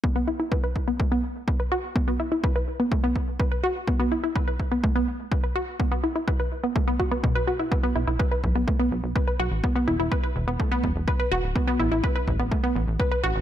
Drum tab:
BD |o-ooo-o-|o-o-ooo-|o-ooo-o-|o-o-ooo-|

BD |o-ooo-o-|o-o-ooo-|o-ooo-o-|